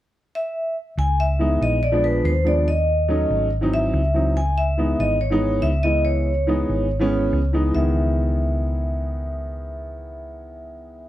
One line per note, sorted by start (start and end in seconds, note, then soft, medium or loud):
0.35 0.74 E5 medium
0.97 1.57 C#2 medium
0.97 1.20 G#5 medium
1.20 1.63 E5 loud
1.39 1.77 E3 medium
1.39 1.77 G#3 medium
1.39 1.77 B3 medium
1.39 1.77 D#4 medium
1.61 2.21 A#1 medium
1.61 1.84 D#5 medium
1.83 2.02 D5 medium
1.92 2.29 F3 medium
1.92 2.30 G#3 medium
1.92 2.30 B3 medium
1.92 2.30 D4 medium
2.04 2.24 B4 medium
2.24 3.24 D#2 medium
2.24 2.45 C5 medium
2.44 2.66 F3 medium
2.44 2.67 G#3 medium
2.44 2.67 B3 medium
2.44 2.67 D4 medium
2.44 2.68 D5 medium
2.68 3.48 D#5 medium
3.09 3.46 F#3 medium
3.09 3.46 A3 medium
3.09 3.46 C#4 medium
3.09 3.47 D#4 medium
3.30 3.90 G#1 medium
3.61 3.99 E3 medium
3.61 3.99 F#3 medium
3.61 3.99 C4 medium
3.61 4.00 D#4 medium
3.74 4.39 E5 medium
3.94 4.93 C#2 medium
4.14 4.36 E3 medium
4.14 4.36 F#3 medium
4.14 4.36 C4 medium
4.14 4.37 D#4 medium
4.37 4.58 G#5 loud
4.58 5.01 E5 medium
4.78 5.15 E3 medium
4.78 5.15 G#3 medium
4.78 5.16 B3 medium
4.78 5.16 D#4 medium
4.99 5.59 G#1 medium
4.99 5.10 D#5 medium
5.21 5.65 C#5 medium
5.30 5.68 E3 medium
5.30 5.68 G#3 medium
5.30 5.69 B3 medium
5.30 5.69 D#4 loud
5.62 6.63 C#2 medium
5.62 5.82 E5 medium
5.83 6.29 E3 medium
5.83 6.29 G#3 medium
5.83 6.29 B3 medium
5.83 6.29 E4 medium
5.83 6.04 D#5 medium
6.05 7.50 C#5 medium
6.47 6.85 E3 medium
6.47 6.85 G#3 medium
6.47 6.85 B3 medium
6.47 6.86 D#4 medium
6.69 7.29 G#1 medium
6.99 7.37 E3 medium
6.99 7.38 G#3 medium
6.99 7.38 B3 medium
6.99 7.38 C#4 loud
7.33 7.70 C#2 medium
7.53 7.70 E3 medium
7.53 7.72 G#3 medium
7.53 7.74 B3 medium
7.53 7.76 D#4 medium
7.71 11.09 E3 medium
7.71 11.09 G#3 medium
7.71 11.09 E5 medium
7.75 11.09 C#2 medium
7.75 11.09 D#3 medium
7.75 11.09 B3 medium